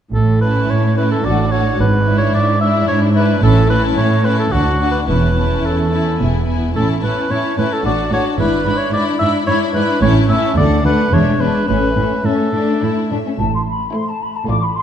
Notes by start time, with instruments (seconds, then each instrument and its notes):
0.14 double bass section A1, cello section A2, oboe A4
0.41 viola section C#4, violin section E4 A5, oboe B4
0.70 cello section A2, oboe C#5
0.97 viola section C#4, violin section E4 A5, oboe B4
1.11 oboe A4
1.24 double bass section A1, cello section A2, viola section D4, violin section F#4 A5, oboe D5
1.51 viola section D4, violin section F#4 A5, oboe C#5
1.79 double bass section G#1, cello section G#2, oboe B4
2.06 viola section D4, violin section E4 E5
2.18 oboe C#5
2.33 cello section G#2, oboe D5
2.60 viola section D4, violin section E4 E5, oboe E5
2.88 cello section G#2, oboe C#5
3.15 viola section D4, violin section E4 E5, oboe B4
3.41 double bass section A1, cello section A2, viola section C#4, violin section E4 A5, oboe A4
3.69 viola section C#4, violin section E4 A5, oboe B4
3.97 cello section A2, oboe C#5
4.24 viola section C#4, violin section E4 A5, oboe B4
4.39 oboe A4
4.52 double bass section D2, cello section D2, viola section D4, oboe F#4, violin section F#4 A5
4.79 viola section D4, violin section F#4 A5
4.91 oboe B4
5.07 double bass section E1, cello section E2, viola section C#4, violin section E4 A5, oboe B4
5.34 viola section C#4, violin section E4 A5
5.64 cello section E2, oboe A4
5.91 viola section C#4, violin section E4 A5
6.18 double bass section E1, cello section E2, viola section B3, violin section E4 G#5
6.46 viola section B3, violin section E4 G#5
6.75 double bass section A1, cello section A2, viola section C#4, violin section E4 A5, oboe A4
7.01 cello section A2, viola section C#4, violin section E4 A5, oboe B4
7.30 cello section A2, viola section C#4, violin section E4 A5, oboe C#5
7.57 cello section A2, viola section C#4, violin section E4 A5, oboe B4
7.73 oboe A4
7.84 double bass section A1, cello section A2, viola section D4, violin section F#4 A5, oboe D5
8.11 cello section A2, viola section D4, violin section F#4 A5, oboe C#5
8.38 double bass section G#1, cello section G#2, viola section D4, violin section E4 B5, oboe B4
8.65 cello section G#2, viola section D4, violin section E4 B5
8.77 oboe C#5
8.92 cello section G#2, viola section D4, violin section E4 B5, oboe D5
9.19 cello section G#2, viola section D4, violin section E4 B5, oboe E5
9.47 cello section G#2, viola section D4, violin section E4 B5, oboe C#5
9.74 cello section G#2, viola section D4, violin section E4 B5, oboe B4
10.01 double bass section A1, cello section A2, viola section C#4, violin section E4 A5, oboe C#5
10.29 cello section A2, viola section C#4, violin section E4 A5, oboe E5
10.57 cello section D2, double bass section D2, viola section A3, violin section D4 F#5, oboe D5
10.84 cello section D2, viola section A3, violin section D4 F#5, oboe B4
11.12 double bass section E1, cello section E2, viola section G#3, violin section D4 E5, oboe C#5
11.40 cello section E2, viola section G#3, violin section D4 E5, oboe B4
11.68 double bass section A1, cello section A2, viola section A3, violin section C#4 E5, oboe B4
11.97 cello section A2, viola section A3, violin section C#4 E5
12.25 cello section A2, viola section A3, violin section C#4 E5, oboe A4
12.53 cello section A2, viola section A3, violin section D4 E5
12.82 cello section A2, viola section A3, violin section E4 E5
13.10 cello section A2, viola section A3, violin section D4 E5
13.27 violin section C#4
13.38 double bass section A1, cello section A2, flute section A5
13.55 flute section C6
13.68 flute section B5
13.93 viola section A3, violin section E4 C5, flute section C6
14.09 flute section A5
14.21 flute section B5
14.36 flute section A5
14.48 double bass section A1, cello section A2, viola section A3, violin section F4 D5, flute section D6
14.63 flute section B5
14.75 flute section C6